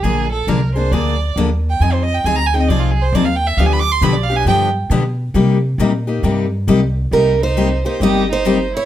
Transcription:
0.03 A#1 D3 F3 A#3 D4 G#4
0.32 A4
0.47 C2 D3 F3 A#3 D4 G#4 A#4
0.75 A#3 D4 G#4 C5
0.92 D2 D3 F3 A#3 D4 G#4 D5
1.36 D#2 D3 F3 A#3 D4 G#4
1.70 G5
1.80 F2 F3 C4 D#4 G#4 G#5
1.93 C5
2.03 D#5
2.14 G5
2.24 D2 F3 C4 D#4 G#4 G#5
2.36 A#5
2.46 G#5
2.54 C4 D#4 G#4 G5
2.61 D#5
2.68 C2 F3 C4 D#4 G#4 D5
2.80 F4
2.91 G#4
3.02 C5
3.12 D#2 F3 C4 D#4 G#4 D5
3.25 F5
3.35 G5
3.47 E5
3.57 D2 D3 F3 B3 D4 G4 F5
3.66 G#5
3.73 B5
3.80 D6
3.92 C6
4.01 B1 D3 F3 B3 D4 G4 B5
4.14 D5
4.24 F5
4.30 B3 D4 G4
4.36 G#5
4.45 G2 D3 F3 B3 D4 G4 G5
4.90 B2 D3 F3 B3 D4 G4
5.34 C3 G3 A#3 D#4 G4
5.78 A#2 C3 G3 A#3 D#4 G4
6.07 A#3 D#4 G4
6.23 G2 C3 G3 A#3 D#4 G4
6.67 C2 C3 G3 A#3 D#4 G4
7.11 C2 C3 G3 A#3 D#4 G4 A#4
7.41 D#4 C5
7.57 C3 G3 A#3 D#4 G4
7.85 A#3 D#4 G4 C5
8.00 G1 C3 G3 A#3 D#4 G4 D#5
8.31 D#4 C5
8.45 C3 G3 A#3 D#4 G4
8.75 E4 C#5

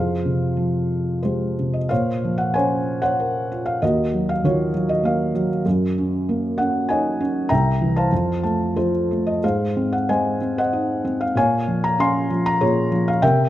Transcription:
Already playing: F2 G#4 C5 F5
0.25 C3
0.57 F3
1.23 G#3 G4 G#4 C5
1.59 C3
1.73 D#5
1.89 A#2 C5 C#5 F5
2.24 F3
2.38 F#5
2.54 C#4 C5 C#5 G#5
3.02 C5 C#5 F#5
3.20 A#4
3.52 F4
3.66 F5
3.82 D#2 F#4 A#4 D#5
4.14 F#3
4.29 F5
4.44 D#3 F4 F#4 C#5
4.74 F#3
4.89 D#5
5.03 A#3 A#4 F5
5.35 F#3
5.66 F#2
5.98 C#4
6.29 A#3
6.58 C#4 F#5
6.89 D#4 C#5 D#5 G#5
7.20 C#4
7.49 C2 E5 G5 A#5
7.82 E3
7.96 C5 F5 A5
8.12 F2
8.43 A3 A5
8.76 F3 F4 A4 C5
9.11 A3
9.27 D#5
9.44 G#2 G#4 C5 F5
9.77 C4
9.93 F#5
10.09 G#3 C5 D#5 G#5
10.41 C4
10.58 C5 D#5 F#5
10.73 D#4
11.05 C4
11.21 F5
11.35 A#2 C#5 F5 G#5
11.68 F3
11.84 A#5
11.98 C#4 F5 G#5 C6
12.30 F3
12.46 A#5
12.61 A#2 F4 G#4 C#5
12.92 F3
13.08 F5
13.22 C3 A#4 E5 G5

